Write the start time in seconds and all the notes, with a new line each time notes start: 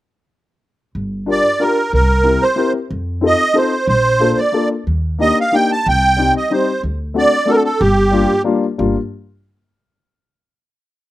0.95 G1
1.26 D4 F4 G4 A#4
1.31 D5
1.59 D4 F4 G4 A#4
1.93 C2 A#4
2.24 C4 E4 G4 A#4
2.42 C5
2.56 C4 E4 G4 A#4
2.91 F2
3.21 C4 D#4 F4 A4
3.27 D#5
3.54 C4 D#4 F4 A4 C5
3.88 A#1 C5
4.19 A#3 D4 F4 A4
4.38 D5
4.52 A#3 D4 F4 A4
4.87 D#2
5.19 A#3 D4 D#4 G4 D#5
5.41 F5
5.52 A#3 D4 D#4 G4 G5
5.72 A5
5.86 C2 G5
6.17 G3 C4 D#4 G4
6.37 D#5
6.50 G3 C4 D#4 G4 C5
6.83 D2
7.14 A3 C4 D4 F#4 D5
7.46 A3 C4 D4 F#4 A4
7.51 A4 A#4
7.64 A4
7.80 G1 G4
8.11 G3 A#3 D4 F4
8.44 G3 A#3 D4 F4
8.78 G1 G3 A#3 D4 F4